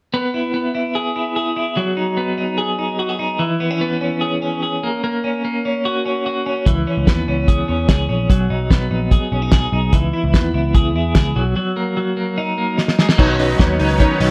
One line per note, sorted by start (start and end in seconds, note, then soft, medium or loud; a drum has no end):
0.14 0.53 B3 medium
0.34 0.73 E4 medium
0.54 2.17 B3 soft
0.75 1.15 E4 soft
0.95 1.36 G#4 medium
1.16 1.55 E4 soft
1.36 2.57 G#4 medium
1.56 1.81 E4 medium
1.77 3.39 F#3 medium
1.97 2.37 D#4 medium
2.17 3.44 B3 soft
2.38 2.77 D#4 soft
2.58 2.99 G#4 medium
2.79 3.18 D#4 medium
2.99 3.09 F#4 soft
3.09 3.44 G#4 soft
3.19 3.44 D#4 medium
3.39 4.87 E3 medium
3.60 3.71 B3 medium
3.71 4.00 C#4 medium
3.81 4.83 B3 medium
4.01 4.42 C#4 medium
4.21 4.62 G#4 medium
4.42 5.24 C#4 medium
4.63 4.87 G#4 soft
4.83 5.03 A#3 medium
5.04 5.43 A#3 medium
5.24 5.65 C#4 medium
5.45 6.71 A#3 medium
5.65 6.05 C#4 soft
5.85 6.25 F#4 medium
6.06 6.45 C#4 soft
6.26 6.71 F#4 medium
6.46 6.71 C#4 medium
6.66 6.84 C#2 medium
6.66 8.30 E3 medium
6.66 kick medium
6.66 closed hi-hat medium
6.87 7.27 C#4 soft
6.97 7.06 C#2 medium
7.07 7.25 D#2 medium
7.07 8.70 B3 medium
7.07 kick loud
7.07 snare loud
7.07 closed hi-hat medium
7.28 7.63 C#2 medium
7.28 7.67 C#4 medium
7.48 7.89 G#4 medium
7.48 kick medium
7.48 closed hi-hat medium
7.68 7.86 E2 medium
7.68 8.08 C#4 soft
7.89 8.06 C#2 medium
7.89 9.11 G#4 medium
7.89 kick loud
7.89 snare loud
7.89 closed hi-hat medium
8.09 8.27 A#1 medium
8.09 8.34 C#4 medium
8.30 8.47 B1 medium
8.30 9.93 F#3 medium
8.30 kick loud
8.30 closed hi-hat medium
8.50 8.68 B1 medium
8.50 8.90 D#4 soft
8.71 8.88 B1 medium
8.71 10.33 B3 medium
8.71 kick loud
8.71 snare medium
8.71 closed hi-hat medium
8.91 9.17 A#1 medium
8.91 9.32 D#4 soft
9.11 9.51 G#4 medium
9.11 kick loud
9.11 closed hi-hat medium
9.32 9.67 B1 medium
9.32 9.42 C#4 soft
9.42 9.72 D#4 soft
9.52 9.97 G#4 medium
9.52 kick medium
9.52 snare loud
9.52 closed hi-hat medium
9.72 9.90 B1 medium
9.72 9.97 D#4 medium
9.93 10.10 C#2 medium
9.93 11.36 E3 medium
9.93 kick medium
9.93 closed hi-hat medium
10.13 10.53 E4 medium
10.24 10.32 C#2 medium
10.34 10.51 D#2 medium
10.34 11.76 B3 medium
10.34 kick medium
10.34 snare medium
10.34 closed hi-hat medium
10.54 10.95 C#2 medium
10.54 10.95 E4 medium
10.75 11.15 G#4 medium
10.75 kick loud
10.75 closed hi-hat medium
10.95 11.12 E2 medium
10.95 11.40 E4 soft
11.15 11.33 C#2 medium
11.15 11.40 G#4 medium
11.15 kick medium
11.15 snare loud
11.15 closed hi-hat medium
11.36 11.53 B1 medium
11.36 11.56 F#3 medium
11.56 11.97 F#3 medium
11.76 12.16 A#3 medium
11.97 13.18 F#3 medium
12.17 12.57 A#3 soft
12.38 12.77 D#4 medium
12.58 12.98 A#3 soft
12.78 13.42 D#4 medium
12.78 snare soft
12.88 snare medium
12.99 13.09 G#3 medium
12.99 snare medium
13.09 13.23 A#3 soft
13.09 snare medium
13.18 13.53 B1 medium
13.18 14.31 D#3 medium
13.18 13.58 F#3 medium
13.18 14.31 B3 medium
13.18 14.31 C#4 medium
13.18 13.35 D#4 loud
13.18 13.35 B4 medium
13.18 13.35 C#5 loud
13.18 kick loud
13.18 crash loud
13.39 13.99 C#4 medium
13.39 13.56 D#4 medium
13.39 13.56 B4 medium
13.39 13.56 D#5 medium
13.39 open hi-hat medium
13.59 13.77 D#2 loud
13.59 14.19 F#3 medium
13.59 13.76 D#4 medium
13.59 13.76 B4 medium
13.59 13.76 C#5 medium
13.59 kick loud
13.59 snare loud
13.59 hi-hat pedal medium
13.59 ride soft
13.79 14.06 C#2 medium
13.79 14.31 D#4 medium
13.79 13.96 D#4 medium
13.79 13.96 B4 medium
13.79 13.96 C#5 loud
13.79 open hi-hat medium
14.00 14.31 C#4 medium
14.00 14.16 D#4 loud
14.00 14.17 B4 loud
14.00 14.17 C#5 loud
14.00 kick loud
14.00 hi-hat pedal medium
14.00 ride medium
14.20 14.31 B1 loud
14.20 14.31 F#3 medium
14.20 14.31 D#4 medium
14.20 14.31 B4 medium
14.20 14.31 D#5 medium
14.20 open hi-hat medium